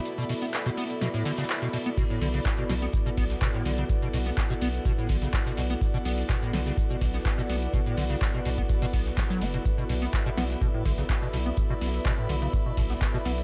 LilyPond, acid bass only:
\new Staff \with { instrumentName = "Acid bass" } { \clef bass \time 4/4 \key b \minor \tempo 4 = 125 r16 b,16 b,16 b16 r16 b,16 b16 r16 b,16 a,16 d16 cis16 r16 b,16 b,16 b16 | b,16 a,16 d16 cis16 r16 b,16 b,16 b16 r16 b,16 b16 r16 b,16 a,16 d16 cis16 | r16 b,16 b,16 b16 r16 b,16 b16 r16 b,16 a,16 d16 cis16 r16 b,16 b,16 b16 | r16 b,16 b16 r16 b,16 a,16 d16 cis16 r16 b,16 b,16 b16 r16 b,16 b16 r16 |
b,16 a,16 d16 cis16 r16 b,16 b,16 b16 r16 b,16 b8 b,16 fis16 b16 b,16 | r16 b,16 b,16 b16 r16 b,16 b16 r16 b,16 a,16 d16 cis16 r16 b,16 b,16 b16 | r16 b,16 b16 r16 b,16 a,16 d16 cis16 r16 b,16 b,16 b16 r16 b,16 b16 r16 | }